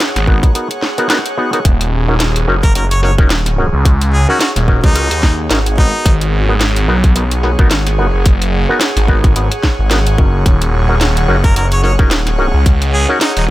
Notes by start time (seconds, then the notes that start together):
Already playing: G#4 C#5 F#5
0.00 snare, closed hi-hat
0.16 G#1, snare, closed hi-hat
0.27 B3 D#4 F#4 A#4, kick
0.43 kick, closed hi-hat
0.55 B3 D#4 F#4 A#4, closed hi-hat
0.71 closed hi-hat
0.83 snare
0.98 B3 D#4 F#4 A#4, closed hi-hat
1.10 B3 D#4 F#4 A#4, snare, closed hi-hat
1.26 closed hi-hat
1.38 B3 D#4 F#4 G#4
1.53 B3 D#4 F#4 A#4, closed hi-hat
1.65 D#1 G#4, kick, closed hi-hat
1.81 C#5, closed hi-hat
1.95 F#5
2.08 C#4 D#4 F#4 A#4
2.20 snare, closed hi-hat
2.36 closed hi-hat
2.48 F#1 C#4 D#4 F#4 A#4
2.63 A#4, kick, closed hi-hat
2.75 F#1 C#4 D#4 F#4 A#4, closed hi-hat
2.91 C#5, closed hi-hat
3.03 C#4 D#4 F#4 A#4 C#5, snare
3.18 C#4 D#4 F#4 A#4, kick
3.30 snare, closed hi-hat
3.46 snare, closed hi-hat
3.58 C#4 D#4 F#4 A#4
3.73 C#2
3.85 kick, closed hi-hat
4.01 closed hi-hat
4.13 G#4
4.29 C#4 D#4 F#4 A#4
4.41 F#4, snare, closed hi-hat
4.56 D#1, snare, closed hi-hat
4.68 C#4 D#4 F#4 A#4, kick
4.84 C#2 D#4, kick, closed hi-hat
4.95 C#4 D#4 F#4 A#4, closed hi-hat
5.11 D#2, closed hi-hat
5.23 kick, snare
5.50 G#1 C#4 D#4 F#4 A#4, snare, closed hi-hat
5.66 closed hi-hat
5.78 B3 D#4 F#4 A#4, kick
6.05 G#1, kick, closed hi-hat
6.21 closed hi-hat
6.49 B3 D#4 F#4 A#4
6.61 snare, closed hi-hat
6.76 closed hi-hat
6.88 B1 B3 D#4 F#4 A#4
7.04 kick, closed hi-hat
7.15 B1 B3 D#4 F#4 A#4, closed hi-hat
7.31 closed hi-hat
7.43 B3 D#4 F#4 A#4, snare
7.59 G#1 B3 D#4 F#4 A#4, kick
7.71 snare, closed hi-hat
7.87 snare, closed hi-hat
7.96 G1 B3 D#4 F#4 A#4
8.14 F#1
8.26 kick, closed hi-hat
8.42 closed hi-hat
8.69 B3 D#4 F#4 A#4
8.81 snare, closed hi-hat
8.96 G#1, snare, closed hi-hat
9.08 B3 D#4 F#4 A#4, kick
9.24 G#1, kick, closed hi-hat
9.36 B3 D#4 F#4 A#4, closed hi-hat
9.52 closed hi-hat
9.63 kick, snare
9.79 G#1
9.91 B3 D#4 F#4 A#4, snare, closed hi-hat
10.07 closed hi-hat
10.18 F#1 C#4 D#4 F#4 A#4, kick
10.46 D#1, kick, closed hi-hat
10.62 closed hi-hat
10.89 C#4 D#4 F#4 A#4
11.01 snare, closed hi-hat
11.17 closed hi-hat
11.28 F#1 C#4 D#4 F#4 A#4
11.44 A#4, kick, closed hi-hat
11.56 F#1 C#4 D#4 F#4 A#4, closed hi-hat
11.72 C#5, closed hi-hat
11.83 C#4 D#4 F#4 A#4 C#5, snare
11.99 C#4 D#4 F#4 A#4, kick
12.11 snare, closed hi-hat
12.27 snare, closed hi-hat
12.38 C#4 D#4 F#4 A#4
12.54 C#2
12.66 kick, closed hi-hat
12.82 closed hi-hat
12.94 G#4
13.09 C#4 D#4 F#4 A#4
13.21 D#4, snare, closed hi-hat
13.37 D#1 D#4, closed hi-hat